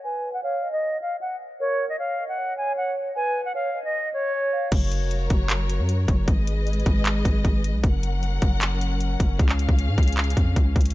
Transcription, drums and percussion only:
4.72 kick loud
4.72 closed hi-hat medium
4.72 crash loud
4.92 closed hi-hat medium
5.11 closed hi-hat medium
5.30 kick loud
5.30 closed hi-hat medium
5.50 clap loud
5.50 closed hi-hat medium
5.70 closed hi-hat medium
5.89 closed hi-hat medium
6.08 kick medium
6.08 closed hi-hat medium
6.28 kick loud
6.28 closed hi-hat medium
6.47 closed hi-hat medium
6.67 closed hi-hat medium
6.73 closed hi-hat soft
6.80 closed hi-hat soft
6.86 kick medium
6.86 closed hi-hat medium
7.06 clap loud
7.06 closed hi-hat medium
7.25 kick loud
7.25 closed hi-hat medium
7.45 kick loud
7.45 closed hi-hat medium
7.64 closed hi-hat medium
7.84 kick loud
7.84 closed hi-hat medium
8.03 closed hi-hat medium
8.23 closed hi-hat medium
8.42 kick loud
8.42 closed hi-hat medium
8.61 clap loud
8.61 closed hi-hat medium
8.81 closed hi-hat medium
9.01 closed hi-hat medium
9.20 kick loud
9.20 closed hi-hat loud
9.39 kick loud
9.39 closed hi-hat medium
9.49 clap medium
9.59 closed hi-hat medium
9.69 kick medium
9.79 closed hi-hat medium
9.98 kick medium
9.98 closed hi-hat soft
10.03 closed hi-hat medium
10.08 closed hi-hat medium
10.12 closed hi-hat medium
10.17 clap loud
10.17 closed hi-hat soft
10.24 closed hi-hat medium
10.30 closed hi-hat medium
10.37 kick loud
10.37 closed hi-hat medium
10.56 kick medium
10.56 closed hi-hat medium
10.76 kick medium
10.76 closed hi-hat medium
10.81 closed hi-hat medium
10.86 closed hi-hat medium
10.90 closed hi-hat loud

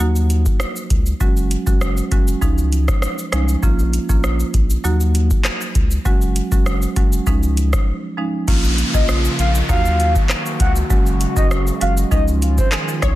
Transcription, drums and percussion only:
0.00 shaker medium
0.16 shaker medium
0.30 closed hi-hat medium
0.30 shaker soft
0.46 kick medium
0.46 shaker medium
0.60 cross-stick loud
0.60 shaker medium
0.76 shaker medium
0.90 kick medium
0.90 closed hi-hat medium
0.90 shaker soft
1.06 shaker medium
1.21 kick loud
1.21 shaker medium
1.37 shaker medium
1.51 closed hi-hat medium
1.51 shaker medium
1.67 kick medium
1.67 shaker medium
1.81 cross-stick loud
1.81 shaker medium
1.97 shaker medium
2.12 kick loud
2.12 closed hi-hat medium
2.12 shaker soft
2.28 shaker medium
2.42 kick medium
2.42 shaker medium
2.58 shaker medium
2.72 closed hi-hat medium
2.72 shaker soft
2.88 kick loud
2.88 cross-stick medium
2.88 shaker medium
3.02 cross-stick loud
3.02 shaker medium
3.19 shaker medium
3.32 cross-stick loud
3.32 closed hi-hat medium
3.32 shaker soft
3.49 shaker medium
3.63 kick loud
3.63 shaker medium
3.79 shaker medium
3.93 closed hi-hat medium
3.93 shaker medium
4.09 kick medium
4.09 shaker medium
4.24 cross-stick medium
4.24 shaker medium
4.40 shaker medium
4.54 kick loud
4.54 closed hi-hat medium
4.54 shaker soft
4.70 shaker medium
4.84 shaker medium
5.01 shaker medium
5.15 closed hi-hat medium
5.15 shaker soft
5.31 kick loud
5.31 shaker medium
5.45 cross-stick loud
5.45 clap loud
5.45 shaker medium
5.61 shaker medium
5.75 kick medium
5.75 closed hi-hat medium
5.75 shaker soft
5.91 shaker medium
6.05 kick loud
6.05 shaker medium
6.22 shaker medium
6.36 closed hi-hat medium
6.36 shaker medium
6.52 kick medium
6.52 shaker medium
6.66 cross-stick loud
6.66 shaker medium
6.82 shaker medium
6.96 kick medium
6.96 closed hi-hat medium
6.96 shaker soft
7.13 shaker medium
7.27 kick medium
7.27 shaker medium
7.43 shaker medium
7.57 closed hi-hat medium
7.57 shaker soft
7.73 kick medium
7.73 cross-stick medium
7.73 shaker medium
8.48 kick loud
8.48 crash loud
8.48 shaker medium
8.64 shaker medium
8.78 closed hi-hat medium
8.78 shaker medium
8.94 kick medium
8.94 shaker medium
9.09 cross-stick loud
9.09 shaker medium
9.25 shaker medium
9.39 closed hi-hat medium
9.39 shaker soft
9.55 shaker medium
9.69 kick medium
9.69 shaker medium
9.85 shaker medium
10.00 closed hi-hat medium
10.00 shaker soft
10.16 kick medium
10.16 shaker medium
10.30 cross-stick loud
10.30 clap loud
10.30 shaker medium
10.46 shaker medium
10.60 kick medium
10.60 closed hi-hat medium
10.60 shaker soft
10.76 shaker medium
10.90 kick loud
10.90 shaker medium
11.06 shaker medium
11.21 closed hi-hat medium
11.21 shaker medium
11.37 kick loud
11.37 shaker medium
11.51 cross-stick loud
11.51 shaker medium
11.67 shaker medium
11.81 closed hi-hat medium
11.81 shaker soft
11.97 shaker medium
12.12 kick medium
12.12 shaker medium
12.28 shaker medium
12.42 closed hi-hat medium
12.42 shaker soft
12.58 kick loud
12.58 shaker medium
12.72 cross-stick loud
12.72 clap loud
12.72 shaker medium
12.88 shaker medium
13.02 kick medium
13.02 cross-stick loud
13.02 closed hi-hat medium
13.02 shaker soft

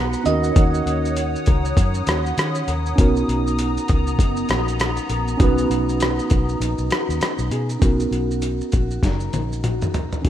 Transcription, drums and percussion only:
0.13 shaker medium
0.26 closed hi-hat medium
0.26 shaker medium
0.44 shaker medium
0.56 kick loud
0.56 closed hi-hat medium
0.56 shaker medium
0.74 shaker medium
0.87 closed hi-hat medium
0.87 shaker medium
1.06 shaker medium
1.17 closed hi-hat medium
1.17 shaker medium
1.36 shaker medium
1.46 kick medium
1.46 closed hi-hat medium
1.46 shaker medium
1.65 shaker medium
1.77 kick medium
1.77 closed hi-hat medium
1.77 shaker medium
1.94 shaker medium
2.07 cross-stick loud
2.07 closed hi-hat medium
2.07 shaker medium
2.26 shaker medium
2.38 cross-stick loud
2.38 closed hi-hat medium
2.38 shaker medium
2.55 shaker medium
2.68 closed hi-hat medium
2.68 shaker medium
2.86 shaker medium
2.98 kick loud
2.98 closed hi-hat medium
2.98 shaker medium
3.17 shaker medium
3.29 closed hi-hat medium
3.29 shaker medium
3.47 shaker medium
3.59 closed hi-hat medium
3.59 shaker medium
3.78 shaker medium
3.88 kick medium
3.88 closed hi-hat medium
3.88 shaker medium
4.07 shaker medium
4.19 kick medium
4.19 closed hi-hat medium
4.19 shaker medium
4.37 shaker medium
4.49 cross-stick loud
4.49 closed hi-hat medium
4.49 shaker medium
4.68 shaker medium
4.80 cross-stick loud
4.80 closed hi-hat medium
4.80 shaker medium
4.97 shaker medium
5.09 closed hi-hat medium
5.09 shaker medium
5.28 shaker medium
5.40 kick loud
5.40 closed hi-hat medium
5.40 shaker medium
5.58 shaker medium
5.71 closed hi-hat medium
5.71 shaker medium
5.89 shaker medium
6.00 cross-stick loud
6.00 closed hi-hat medium
6.00 shaker medium
6.19 shaker medium
6.30 kick medium
6.30 closed hi-hat medium
6.30 shaker medium
6.49 shaker soft
6.62 closed hi-hat medium
6.62 shaker medium
6.78 shaker medium
6.90 cross-stick loud
6.90 closed hi-hat medium
6.90 shaker medium
7.10 shaker medium
7.21 cross-stick loud
7.21 closed hi-hat medium
7.21 shaker medium
7.39 shaker medium
7.51 closed hi-hat medium
7.51 shaker medium
7.70 shaker medium
7.82 kick loud
7.82 closed hi-hat medium
7.82 shaker medium
8.00 shaker medium
8.13 closed hi-hat medium
8.13 shaker medium
8.31 shaker soft
8.42 closed hi-hat medium
8.42 shaker medium
8.61 shaker medium
8.72 kick medium
8.72 closed hi-hat medium
8.72 shaker medium
8.91 shaker soft
9.03 kick medium
9.03 snare medium
9.03 closed hi-hat medium
9.03 shaker medium
9.20 shaker medium
9.33 closed hi-hat medium
9.33 high tom medium
9.33 shaker medium
9.53 shaker soft
9.64 closed hi-hat medium
9.64 mid tom medium
9.64 shaker medium
9.82 mid tom medium
9.82 shaker soft
9.94 closed hi-hat soft
9.94 floor tom medium
9.94 shaker soft
10.12 floor tom medium
10.12 shaker medium
10.25 kick medium
10.25 closed hi-hat medium

